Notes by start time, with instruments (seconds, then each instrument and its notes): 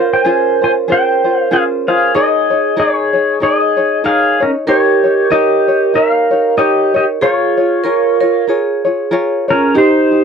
Already playing: vibraphone A#4, ukulele C5
0.00 ukulele C#4 F4
0.13 pedal steel guitar C5 G5
0.25 ukulele C#4 F4 G#4 C5, pedal steel guitar G#5
0.61 ukulele C#4 F4 C5, pedal steel guitar C5 G#5
0.88 ukulele C#4 F4 G#4 C5
0.92 pedal steel guitar C5 G5
1.24 ukulele C#4 F4 C5
1.40 pedal steel guitar F5
1.51 ukulele C#4 F4 G#4 C5, pedal steel guitar G#4 F5
1.88 ukulele C#4 F4 C5, pedal steel guitar G#4 F5
2.15 ukulele D#4 G#4 A#4 C#5, vibraphone G#4, pedal steel guitar G#4 D#5
2.50 ukulele D#4 G#4 C#5
2.76 ukulele D#4 G#4 A#4 C#5, pedal steel guitar G#4 C#5
3.13 ukulele D#4 G#4 C#5
3.40 ukulele D#4 G#4 A#4 C#5, pedal steel guitar G#4 D#5
3.77 ukulele D#4 G#4 C#5
4.04 ukulele D#4 G#4 A#4 C#5, pedal steel guitar G#4 F5
4.40 pedal steel guitar C#4 A#4, ukulele D#4 G#4 C#5
4.67 ukulele D#4 G4 A#4 C#5, pedal steel guitar G4 C#5, vibraphone A#4
5.04 ukulele D#4 G4 C#5
5.30 ukulele D#4 G4 A#4 C#5, pedal steel guitar G4 D#5
5.68 ukulele D#4 G4 C#5
5.94 ukulele D#4 G4 A#4 C#5, pedal steel guitar A#4 F5
6.31 ukulele D#4 G4 C#5
6.57 ukulele D#4 G4 A#4 C#5, pedal steel guitar G4 D#5
6.94 ukulele D#4 G4 C#5, pedal steel guitar G4 D#5
7.21 ukulele F4 G#4 A#4 C#5, pedal steel guitar F4 C#5, vibraphone G#4
7.57 ukulele F4 G#4 C#5
7.84 ukulele F4 G#4 A#4 C#5, vibraphone A#4
8.21 ukulele F4 G#4 C#5, vibraphone A#4
8.47 ukulele F4 G#4 A#4 C#5, vibraphone G#4
8.85 ukulele F4 G#4 C#5
9.11 ukulele F4 G#4 A#4 C#5
9.48 pedal steel guitar C#4 A#4, ukulele F4 G#4 C#5
9.74 ukulele D#4 G4 A#4, pedal steel guitar D#4 C5, vibraphone G4
10.11 ukulele D#4 G4